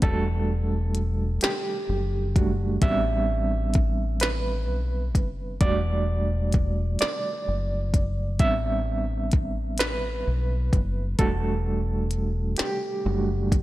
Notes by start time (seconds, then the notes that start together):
0.02 E1 G3 A3 D4 F#4 A4, kick, closed hi-hat
0.95 closed hi-hat
1.41 G4, snare, closed hi-hat
1.89 F#1
2.36 G3 A3 D4 F#4, kick, closed hi-hat
2.82 A1 G3 B3 C4 D4 E5, kick, closed hi-hat
3.74 kick, closed hi-hat
4.20 B4, snare, closed hi-hat
4.68 B1
5.15 F#1, kick, closed hi-hat
5.61 E1 G3 A3 D4 F#4 D5, kick, closed hi-hat
6.53 kick, closed hi-hat
6.99 D5, muted fingered electric bass stroke, snare, closed hi-hat
7.48 F#1
7.94 kick, closed hi-hat
8.39 A1 G3 B3 C4 D4 E5, kick, closed hi-hat
9.32 kick, closed hi-hat
9.78 B4, snare, closed hi-hat
10.27 B1
10.73 F#1, kick, closed hi-hat
11.19 E1 G3 A3 D4 F#4 A4, kick, closed hi-hat
12.11 closed hi-hat
12.57 G4, muted fingered electric bass stroke, snare, closed hi-hat
13.05 F#1 G3 A3 D4 F#4
13.52 kick, closed hi-hat